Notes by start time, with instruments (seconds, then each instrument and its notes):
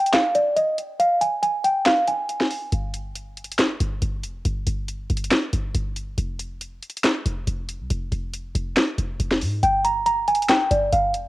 Already playing: celesta G5
0.06 closed hi-hat
0.13 celesta F5, snare, clap, closed hi-hat
0.35 celesta D5, closed hi-hat
0.56 celesta D#5, closed hi-hat
0.78 closed hi-hat
1.00 celesta F5, closed hi-hat
1.21 celesta G#5, closed hi-hat
1.43 celesta G#5, closed hi-hat
1.64 celesta G5, closed hi-hat
1.86 celesta F5, snare, clap, closed hi-hat
2.08 celesta G#5, closed hi-hat
2.29 closed hi-hat
2.41 snare
2.51 open hi-hat
2.72 808-style bass G1, closed hi-hat
2.94 closed hi-hat
3.16 closed hi-hat
3.37 closed hi-hat
3.44 closed hi-hat
3.52 closed hi-hat
3.59 snare, clap, closed hi-hat
3.80 808-style bass G1, closed hi-hat
4.02 808-style bass G1, closed hi-hat
4.23 808-style bass F1, closed hi-hat
4.45 808-style bass G1, closed hi-hat
4.67 808-style bass G1, closed hi-hat
4.88 closed hi-hat
5.10 808-style bass G1, closed hi-hat
5.17 closed hi-hat
5.24 closed hi-hat
5.31 snare, clap, closed hi-hat
5.53 808-style bass G1, closed hi-hat
5.75 808-style bass G1, closed hi-hat
5.96 closed hi-hat
6.18 808-style bass F1, closed hi-hat
6.39 closed hi-hat
6.61 closed hi-hat
6.83 closed hi-hat
6.90 closed hi-hat
6.97 closed hi-hat
7.04 snare, clap, closed hi-hat
7.26 808-style bass F1, closed hi-hat
7.47 808-style bass F1, closed hi-hat
7.69 closed hi-hat
7.80 808-style bass C2
7.90 808-style bass F1, closed hi-hat
8.12 808-style bass F1, closed hi-hat
8.34 closed hi-hat
8.55 808-style bass F1, closed hi-hat
8.77 snare, clap, closed hi-hat
8.98 808-style bass F1, closed hi-hat
9.20 808-style bass F1, closed hi-hat
9.31 snare
9.41 808-style bass G#2, open hi-hat
9.63 808-style bass G1, celesta G5, closed hi-hat
9.85 celesta A#5, closed hi-hat
10.06 celesta A#5, closed hi-hat
10.28 celesta G#5, closed hi-hat
10.35 closed hi-hat
10.42 closed hi-hat
10.49 celesta G5, snare, clap, closed hi-hat
10.71 808-style bass G1, celesta D5, closed hi-hat
10.92 808-style bass G1, celesta F5, closed hi-hat
11.14 808-style bass F1, closed hi-hat